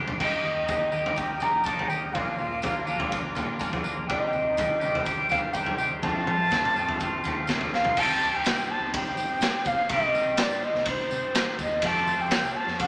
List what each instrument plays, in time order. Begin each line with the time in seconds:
Already playing: clean electric guitar D#3 D4 G4, transistor combo organ G4 C5 C6 D6
0.00 clean electric guitar G3
0.08 floor tom
0.18 fingered electric bass D#2, clean electric guitar D#3 A#3 D#4 G4, transistor combo organ G4 D#5 A#5 D#6, kick, floor tom, crash
0.23 flute D#5
0.43 fingered electric bass D#2, clean electric guitar A#3 D#4 G4, tambourine
0.68 fingered electric bass D#2, clean electric guitar D#3 A#3 D#4 G4, kick, floor tom, tambourine
0.92 fingered electric bass D#3, clean electric guitar D#3 A#3 D#4 G4, tambourine
1.06 floor tom
1.16 clean electric guitar D#3 A#3 D#4 G4, flute G5, kick, tambourine
1.40 clean electric guitar D#4 G4, flute A#5, floor tom, tambourine
1.45 clean electric guitar A#3
1.53 fingered electric bass A#1
1.64 clean electric guitar D#3 A#3 D#4, flute A5, kick, tambourine
1.69 clean electric guitar G4
1.79 floor tom
1.88 fingered electric bass D#3, clean electric guitar D#4 G4, flute G5, tambourine
1.93 clean electric guitar A#3
2.12 fingered electric bass A#1, clean electric guitar A#2 F3 A#3 D4, transistor combo organ F4 D5 D6, flute F5, kick, floor tom
2.17 clean electric guitar F4
2.38 fingered electric bass A#2, clean electric guitar A#3 D4 F4, tambourine
2.62 fingered electric bass A#1, clean electric guitar F3 A#3 D4 F4, kick, floor tom, tambourine
2.85 fingered electric bass A#1, clean electric guitar A#2 F3 A#3 D4 F4, tambourine
3.00 floor tom
3.10 clean electric guitar F3 A#3 D4 F4, kick, tambourine
3.35 fingered electric bass A#2, clean electric guitar A#3 D4 F4, floor tom, tambourine
3.59 clean electric guitar A#2 F3 A#3 D4 F4, kick, tambourine
3.72 fingered electric bass F2, floor tom
3.83 clean electric guitar A#3 D4 F4, tambourine
3.97 fingered electric bass A#1
4.07 fingered electric bass C2, clean electric guitar C3 D#3 G3 D4 G4, transistor combo organ C5 G5, flute D#5, kick, floor tom
4.32 fingered electric bass C2, clean electric guitar G3 D4 G4, tambourine
4.57 fingered electric bass C2, clean electric guitar D#3 G3 D4 G4, kick, floor tom, tambourine
4.80 fingered electric bass C3, clean electric guitar C3 D#3 G3 D4 G4, tambourine
4.95 floor tom
5.03 clean electric guitar D#3 G3 D4 G4, flute G5, kick, tambourine
5.29 clean electric guitar G3 D4 G4, flute F5, floor tom, tambourine
5.43 fingered electric bass G2
5.53 clean electric guitar C3 D#3 G3 D4 G4, flute G5, kick, tambourine
5.66 floor tom
5.77 fingered electric bass C3, clean electric guitar G3 D4 G4, flute G5, tambourine
6.02 clean electric guitar F2 C3 F3 A3 C4 F4, fingered electric bass F2, transistor combo organ F4 A5 C6, flute A5, kick, floor tom, tambourine
6.26 fingered electric bass F3, clean electric guitar F3 A3 C4 F4, mid tom
6.51 fingered electric bass F2, clean electric guitar F3 A3 C4 F4, kick, snare, floor tom, tambourine
6.65 mid tom
6.75 fingered electric bass F2, clean electric guitar F2 C3 F3 A3 C4 F4, tambourine
6.88 floor tom
7.00 clean electric guitar F3 A3 C4 F4, kick, tambourine
7.24 fingered electric bass D#2, clean electric guitar C4 F4, floor tom, tambourine
7.28 clean electric guitar F3 A3
7.47 fingered electric bass D2, clean electric guitar F2 C3 F3 A3 C4, kick, snare, tambourine
7.51 clean electric guitar F4
7.61 floor tom
7.71 fingered electric bass C2, clean electric guitar A3 C4 F4, flute F5, snare
7.76 clean electric guitar F3
7.85 floor tom
7.97 fingered electric bass C2, clean electric guitar C3 D#3 G3 C4 G4, transistor combo organ D#4 G4 C5 G5, flute A5, kick, crash, tambourine
8.08 tambourine
8.20 tambourine
8.32 fingered electric bass C2, tambourine
8.36 flute G5
8.44 snare, ride bell, tambourine
8.56 fingered electric bass G2, tambourine
8.68 flute A5, tambourine
8.80 fingered electric bass C2
8.94 flute G5, kick, ride bell
9.05 tambourine
9.16 fingered electric bass A1, tambourine
9.29 tambourine
9.41 fingered electric bass A2, snare, ride bell, tambourine
9.65 fingered electric bass C2, flute F5, kick, tambourine
9.78 tambourine
9.88 fingered electric bass C2, clean electric guitar C3 D#3 G3 C4, flute D#5, transistor combo organ A5, kick, ride bell, tambourine
9.93 clean electric guitar G4
10.03 tambourine
10.15 tambourine
10.26 fingered electric bass C2, tambourine
10.37 flute D5, snare, ride bell, tambourine
10.49 fingered electric bass G2, tambourine
10.64 flute D#5, tambourine
10.74 fingered electric bass C2, snare
10.85 flute C5, kick, ride bell
11.00 tambourine
11.10 fingered electric bass C3, tambourine
11.34 fingered electric bass A1, snare, ride bell, tambourine
11.59 fingered electric bass D#2, flute D#5, kick, tambourine
11.71 tambourine
11.80 fingered electric bass F2, clean electric guitar F3 A3, transistor combo organ A3 G4 F5, kick, ride bell, tambourine
11.84 clean electric guitar C4 G4, flute A5
11.96 tambourine
12.07 tambourine
12.18 fingered electric bass F2, flute G5, tambourine
12.31 snare, ride bell, tambourine
12.42 fingered electric bass C2, tambourine
12.55 flute A5, tambourine
12.67 fingered electric bass F2, snare
12.79 flute G5, kick, ride bell